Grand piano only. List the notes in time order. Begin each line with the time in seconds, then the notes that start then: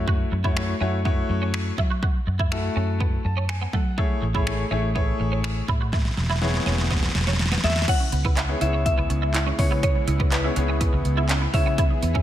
Already playing: A3 E4 F#4 C#5
0.44 A3 E4 F#4 C#5
0.56 A3 E4 F#4 C#5
0.81 A3 E4 F#4 C#5
1.05 A3 E4 F#4 C#5
2.51 A3 E4 F#4 A4
3.25 A5
3.49 G#5
3.74 F#5
3.98 A3 E4 G#4 C#5
4.34 A3 E4 G#4 C#5
4.46 A3 E4 G#4 C#5
4.71 A3 E4 G#4 C#5
4.95 A3 E4 G#4 C#5
6.42 B3 E4 G#4 C#5
8.49 B3 E4 G#4 C#5
8.61 B3 E4 G#4 C#5
9.58 B3 E4 G#4 C#5
10.44 B3 E4 G#4 C#5
10.56 B3 E4 G#4 C#5
11.54 B3 E4 G#4 C#5